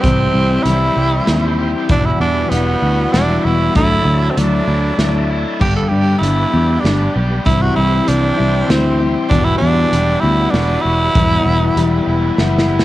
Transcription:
Already playing: overdriven electric guitar G3 G4, tonewheel organ G3
0.01 fingered electric bass C2, steel-string acoustic guitar C3 G3, tenor saxophone C4, kick, closed hi-hat
0.05 steel-string acoustic guitar E3 C4 E4, tonewheel organ C5 E5 C6
0.34 fingered electric bass C2, overdriven electric guitar E3
0.63 fingered electric bass C2, steel-string acoustic guitar E3, tenor saxophone E4, closed hi-hat
0.67 steel-string acoustic guitar G3 C4 E4
0.96 fingered electric bass C2, overdriven electric guitar G4
1.27 fingered electric bass D#2, steel-string acoustic guitar G3 C4 E4, snare, closed hi-hat
1.59 overdriven electric guitar G4
1.89 fingered electric bass E1, steel-string acoustic guitar E2 B2 E3 G3 B3 F#4, tenor saxophone D4, tonewheel organ E5 F#5 B5, kick, closed hi-hat
2.05 tenor saxophone E4
2.20 fingered electric bass E2, overdriven electric guitar E3, tenor saxophone D4
2.50 fingered electric bass E1, steel-string acoustic guitar E3 G3 B3 F#4, tenor saxophone B3, closed hi-hat
2.82 fingered electric bass D2, overdriven electric guitar F#4
3.13 fingered electric bass E1, steel-string acoustic guitar E3 G3 B3 F#4, tenor saxophone D4, overdriven electric guitar E4, snare, closed hi-hat
3.39 tenor saxophone D4
3.45 fingered electric bass E1, steel-string acoustic guitar E3 G3 B3 F#4, tenor saxophone E4
3.75 fingered electric bass D2, steel-string acoustic guitar D3 F#3 A3 D4 E4, tenor saxophone E4, tonewheel organ F#4 D5 A5, kick, closed hi-hat
4.05 fingered electric bass D2, overdriven electric guitar F#3
4.30 tenor saxophone C4
4.37 fingered electric bass D2, steel-string acoustic guitar F#3 A3 D4 E4, tenor saxophone D4, closed hi-hat
4.67 fingered electric bass D2, overdriven electric guitar E4
4.98 fingered electric bass D2, steel-string acoustic guitar F#3 A3 D4 E4, snare, closed hi-hat
5.30 overdriven electric guitar E4
5.59 fingered electric bass G1, steel-string acoustic guitar G2 D3 G3 B3 D4 G4, tonewheel organ G4 B4 B5, tenor saxophone G4, kick, crash
5.76 tenor saxophone A4
5.88 fingered electric bass G2, overdriven electric guitar G3, tenor saxophone G4
6.19 fingered electric bass G1, steel-string acoustic guitar G3 B3 D4, tenor saxophone E4
6.24 steel-string acoustic guitar G4, closed hi-hat
6.52 fingered electric bass E2, steel-string acoustic guitar G3 B3 D4 G4
6.80 fingered electric bass G1, steel-string acoustic guitar G3 B3, tenor saxophone D4
6.85 steel-string acoustic guitar D4 G4, snare, closed hi-hat
7.15 fingered electric bass B1, overdriven electric guitar G4
7.45 fingered electric bass C2, steel-string acoustic guitar C3 E3 G3 C4 E4, tonewheel organ G3 C5 E5 C6, tenor saxophone E4, kick, closed hi-hat
7.62 tenor saxophone F#4
7.76 fingered electric bass C2, overdriven electric guitar E3, tenor saxophone E4
8.07 fingered electric bass C2, steel-string acoustic guitar E3 G3 C4 E4, tenor saxophone D4, closed hi-hat
8.37 fingered electric bass C2, steel-string acoustic guitar G3 C4 E4, overdriven electric guitar G4
8.67 fingered electric bass D2, steel-string acoustic guitar E3 G3 C4 E4, tenor saxophone C4, snare, closed hi-hat
8.98 steel-string acoustic guitar G3 C4 E4, overdriven electric guitar G4
9.29 fingered electric bass E1, steel-string acoustic guitar E2 B2 E3 G3 B3 F#4, tenor saxophone D4, tonewheel organ F#5 B5, kick, closed hi-hat
9.44 tenor saxophone E4
9.58 overdriven electric guitar E3, tenor saxophone D4
9.62 fingered electric bass E2
9.92 fingered electric bass E1, steel-string acoustic guitar E3 G3 B3 F#4, closed hi-hat
10.20 fingered electric bass D2, steel-string acoustic guitar B3 F#4, tenor saxophone E4
10.24 steel-string acoustic guitar E3 G3
10.51 fingered electric bass E1, steel-string acoustic guitar E3, tenor saxophone D4, snare, closed hi-hat
10.55 steel-string acoustic guitar G3 B3 F#4
10.81 fingered electric bass E1, tenor saxophone E4
10.86 overdriven electric guitar F#4
11.14 fingered electric bass E1, steel-string acoustic guitar E2 B2 E3 G3 B3 E4, tonewheel organ B4, kick, closed hi-hat
11.46 fingered electric bass E1, overdriven electric guitar E3
11.76 fingered electric bass E1, steel-string acoustic guitar E3 G3 B3 E4, closed hi-hat
12.07 fingered electric bass E1, overdriven electric guitar E4
12.37 fingered electric bass F#1, steel-string acoustic guitar E3 G3 B3 E4, snare
12.59 snare
12.69 overdriven electric guitar E4
12.80 snare

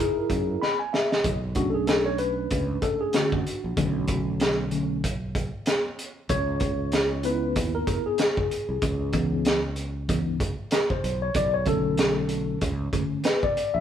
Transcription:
Already playing: tine electric piano D#4 E4 G#4 A#4
0.30 fretless electric bass F#2, kick, closed hi-hat
0.62 tine electric piano B5, snare
0.79 tine electric piano G#5
0.93 tine electric piano E5, snare
1.11 tine electric piano D#5, snare
1.24 fretless electric bass B1, kick, closed hi-hat
1.55 tine electric piano A3 C#4 D4 F#4, kick, closed hi-hat
1.70 tine electric piano A4
1.74 tine electric piano G#4
1.87 tine electric piano A4, snare, closed hi-hat
2.06 tine electric piano C#5
2.18 tine electric piano B4, closed hi-hat
2.51 fretless electric bass C#2, kick, closed hi-hat
2.82 tine electric piano A4, kick, closed hi-hat
3.01 tine electric piano G#4
3.13 tine electric piano D3 A3 C#4 F#4, snare, closed hi-hat
3.32 kick
3.47 closed hi-hat
3.64 fretless electric bass A#1
3.76 fretless electric bass B1, tine electric piano D3 A3 C#4, kick, closed hi-hat
4.07 kick, closed hi-hat
4.40 snare, closed hi-hat
4.71 tine electric piano D3 A3 C#4, closed hi-hat
5.04 kick, closed hi-hat
5.35 kick, closed hi-hat
5.66 snare, closed hi-hat
5.99 closed hi-hat
6.29 fretless electric bass C#2, tine electric piano C#5, kick, closed hi-hat
6.60 kick, closed hi-hat
6.92 snare, closed hi-hat
7.23 tine electric piano B3 D#4 E4 B4, closed hi-hat
7.56 fretless electric bass D#2, kick, closed hi-hat
7.75 tine electric piano A#4
7.87 kick, closed hi-hat
8.06 tine electric piano G#4
8.18 snare, closed hi-hat
8.37 kick
8.51 closed hi-hat
8.69 fretless electric bass C2
8.82 fretless electric bass C#2, kick, closed hi-hat
9.13 tine electric piano E3 B3 D#4, kick, closed hi-hat
9.45 snare, closed hi-hat
9.76 closed hi-hat
10.09 tine electric piano E3 B3 D#4, kick, closed hi-hat
10.40 kick, closed hi-hat
10.71 tine electric piano A#4, snare, closed hi-hat
10.90 tine electric piano C5, kick
11.04 fretless electric bass B1, closed hi-hat
11.22 tine electric piano C#5
11.34 fretless electric bass B1, tine electric piano D5, kick, closed hi-hat
11.54 tine electric piano C#5
11.66 tine electric piano D3 A3 C#4 A4, kick, closed hi-hat
11.97 snare, closed hi-hat
12.29 closed hi-hat
12.61 fretless electric bass C#2, kick, closed hi-hat
12.93 tine electric piano D3 A3 C#4, kick, closed hi-hat
13.24 tine electric piano B4, snare, closed hi-hat
13.43 tine electric piano D5, kick
13.57 closed hi-hat
13.74 fretless electric bass A#1, tine electric piano E5

